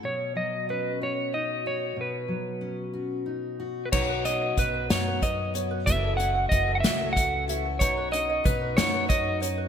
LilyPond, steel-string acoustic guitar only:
\new Staff \with { instrumentName = "Steel-string acoustic guitar" } { \time 6/8 \key b \mixolydian \tempo 4. = 62 << { r4 cis'8 fis'8 dis'8 fis'8~ | fis'4 cis'8 fis'8 dis'8 fis'8~ | fis'2. | r2. |
r2. | } \\ { b,8 fis2~ fis8 | b,8 fis2~ fis8 | r2. | r2. |
r2. | } >> }